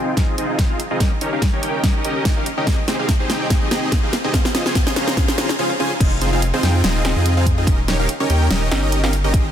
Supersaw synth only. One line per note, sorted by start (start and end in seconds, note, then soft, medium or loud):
0.00 0.15 C4 medium
0.00 0.15 D#4 medium
0.00 0.15 F4 medium
0.00 0.15 G#4 medium
0.00 0.15 G5 medium
0.38 0.48 C4 medium
0.38 0.48 D#4 medium
0.38 0.48 F4 medium
0.38 0.48 G#4 medium
0.38 0.48 D#5 loud
0.49 0.67 C4 medium
0.49 0.67 D#4 medium
0.49 0.67 F4 medium
0.49 0.67 G#4 medium
0.49 0.67 D#5 medium
0.70 0.80 C4 medium
0.70 0.80 D#4 medium
0.70 0.80 F4 medium
0.70 0.80 G#4 medium
0.70 0.80 F5 loud
0.91 0.99 C4 medium
0.91 0.99 D#4 medium
0.91 0.99 F4 medium
0.91 0.99 G#4 medium
0.91 0.99 D#5 loud
1.21 1.30 C#4 medium
1.21 1.30 D#4 medium
1.21 1.30 G4 medium
1.21 1.30 A#4 medium
1.21 1.30 C#5 medium
1.32 1.42 C#4 medium
1.32 1.42 D#4 medium
1.32 1.42 G4 medium
1.32 1.42 A#4 medium
1.32 1.42 F5 medium
1.53 1.62 C#4 medium
1.53 1.62 D#4 medium
1.53 1.62 G4 medium
1.53 1.62 A#4 medium
1.53 1.62 C#5 loud
1.63 1.81 C#4 medium
1.63 1.82 D#4 medium
1.63 1.82 G4 medium
1.63 1.81 A#4 medium
1.63 1.81 G5 medium
2.05 2.14 C#4 medium
2.05 2.14 D#4 medium
2.05 2.14 G4 medium
2.05 2.14 A#4 medium
2.05 2.14 D#5 loud
2.16 2.34 C#4 medium
2.16 2.34 D#4 medium
2.16 2.34 G4 medium
2.16 2.34 A#4 medium
2.16 2.34 D#5 medium
2.37 2.46 C#4 medium
2.37 2.46 D#4 medium
2.37 2.46 G4 medium
2.37 2.46 A#4 medium
2.37 2.46 F5 loud
2.58 2.66 C#4 medium
2.58 2.66 D#4 medium
2.58 2.66 G4 medium
2.58 2.66 A#4 medium
2.58 2.66 D#5 loud
2.67 2.78 D#4 medium
2.67 2.78 G4 medium
2.67 2.78 G#4 medium
2.67 2.78 D#5 medium
2.88 2.97 C4 medium
2.88 2.97 D#4 medium
2.88 2.97 G4 medium
2.88 2.97 G#4 medium
2.88 2.97 C5 medium
2.99 3.09 C4 medium
2.99 3.09 D#4 medium
2.99 3.09 G4 medium
2.99 3.09 G#4 medium
2.99 3.09 F5 loud
3.20 3.28 C4 medium
3.20 3.28 D#4 medium
3.20 3.28 G4 medium
3.20 3.28 G#4 medium
3.20 3.28 C5 loud
3.30 3.48 C4 medium
3.30 3.48 D#4 medium
3.30 3.48 G4 medium
3.30 3.48 G#4 medium
3.30 3.48 G5 medium
3.50 3.69 C4 medium
3.50 3.69 D#4 medium
3.50 3.69 G4 medium
3.50 3.69 G#4 medium
3.50 3.69 D#5 loud
3.71 3.81 C4 medium
3.71 3.81 D#4 medium
3.71 3.81 G4 medium
3.71 3.81 G#4 medium
3.71 3.81 D#5 loud
3.83 4.01 C4 medium
3.83 4.01 D#4 medium
3.83 4.01 G4 medium
3.83 4.01 G#4 medium
3.83 4.01 D#5 medium
4.03 4.13 C4 loud
4.03 4.13 D#4 medium
4.03 4.13 G4 medium
4.03 4.13 G#4 medium
4.03 4.13 F5 loud
4.24 4.32 C4 loud
4.24 4.32 D#4 medium
4.24 4.32 G4 medium
4.24 4.32 G#4 medium
4.24 4.32 D#5 loud
4.34 4.45 C#4 medium
4.34 4.45 F4 medium
4.34 4.45 C5 medium
4.34 4.45 F5 medium
4.55 4.63 C#4 medium
4.55 4.63 F4 medium
4.55 4.63 G#4 medium
4.55 4.63 C5 medium
4.55 4.63 D#5 medium
4.66 4.76 C#4 medium
4.66 4.76 F4 medium
4.66 4.76 G#4 medium
4.66 4.76 C5 medium
4.66 4.76 G#5 medium
4.87 4.95 C#4 medium
4.87 4.95 F4 medium
4.87 4.95 G#4 medium
4.87 4.95 C5 medium
4.87 4.95 D#5 loud
4.96 5.15 C#4 medium
4.96 5.15 F4 medium
4.96 5.15 G#4 medium
4.96 5.15 C5 medium
4.96 5.15 A#5 medium
5.17 5.36 C#4 medium
5.17 5.36 G#4 medium
5.38 5.49 C#4 medium
5.38 5.49 F4 medium
5.38 5.49 G#4 medium
5.38 5.49 C5 medium
5.38 5.49 A#5 loud
5.59 5.70 C#4 loud
5.59 5.70 F4 medium
5.59 5.70 G#4 medium
5.59 5.70 C5 medium
5.59 5.70 F5 loud
5.80 5.91 C#4 medium
5.80 5.91 F4 medium
5.80 5.91 G#4 medium
5.80 5.91 C5 medium
5.80 5.91 G#5 loud
6.00 6.12 C4 medium
6.00 6.12 D#4 medium
6.00 6.12 F4 medium
6.00 6.12 G#4 medium
6.00 6.12 D#5 loud
6.21 6.30 C4 medium
6.21 6.30 D#4 medium
6.21 6.30 F4 medium
6.21 6.30 G#4 medium
6.21 6.30 C5 medium
6.33 6.42 C4 medium
6.33 6.42 D#4 medium
6.33 6.42 F4 medium
6.33 6.42 G#4 medium
6.33 6.42 F5 medium
6.54 6.62 C4 medium
6.54 6.62 D#4 medium
6.54 6.62 F4 medium
6.54 6.62 G#4 medium
6.54 6.62 C5 loud
6.63 6.82 C4 medium
6.63 6.82 D#4 medium
6.63 6.82 F4 medium
6.63 6.82 G#4 medium
6.63 6.82 G5 medium
6.84 7.02 C4 medium
6.84 7.02 D#4 medium
6.84 7.02 F4 medium
6.84 7.02 G#4 medium
6.84 7.02 D#5 loud
7.05 7.14 C4 medium
7.05 7.14 D#4 medium
7.05 7.14 F4 medium
7.05 7.14 G#4 medium
7.05 7.14 D#5 loud
7.16 7.34 C4 medium
7.16 7.34 D#4 medium
7.16 7.34 F4 medium
7.16 7.34 G#4 medium
7.16 7.34 D#5 medium
7.37 7.47 C4 loud
7.37 7.47 D#4 medium
7.37 7.47 F4 medium
7.37 7.47 G#4 medium
7.37 7.47 F5 loud
7.58 7.66 C4 loud
7.58 7.66 D#4 medium
7.58 7.66 F4 medium
7.58 7.66 G#4 medium
7.58 7.66 D#5 loud
7.67 7.79 C#4 medium
7.67 7.79 D#4 medium
7.67 7.79 G4 medium
7.67 7.79 A#4 medium
7.67 7.79 D#5 loud
7.88 7.97 C#4 medium
7.88 7.97 D#4 medium
7.88 7.97 G4 medium
7.88 7.97 A#4 medium
7.88 7.97 C#5 medium
7.99 8.09 C#4 medium
7.99 8.09 D#4 medium
7.99 8.09 G4 medium
7.99 8.09 A#4 medium
7.99 8.09 F5 loud
8.20 8.28 C#4 medium
8.20 8.28 D#4 medium
8.20 8.28 G4 medium
8.20 8.28 A#4 medium
8.20 8.28 C#5 loud
8.30 8.48 C#4 medium
8.30 8.48 D#4 medium
8.30 8.48 G4 medium
8.30 8.48 A#4 medium
8.30 8.48 G5 medium
8.51 8.69 C#4 medium
8.51 8.69 D#4 medium
8.51 8.69 G4 medium
8.51 8.69 A#4 medium
8.51 8.69 D#5 loud
8.71 8.81 C#4 medium
8.71 8.81 D#4 medium
8.71 8.81 G4 medium
8.71 8.81 A#4 medium
8.71 8.81 D#5 loud
8.83 9.01 C#4 medium
8.83 9.01 D#4 medium
8.83 9.01 G4 medium
8.83 9.01 A#4 medium
8.83 9.01 D#5 medium
9.03 9.13 C#4 medium
9.03 9.13 D#4 medium
9.03 9.13 G4 medium
9.03 9.13 A#4 medium
9.03 9.13 F5 loud
9.24 9.32 C#4 loud
9.24 9.32 D#4 medium
9.24 9.32 G4 medium
9.24 9.32 A#4 medium
9.24 9.32 D#5 loud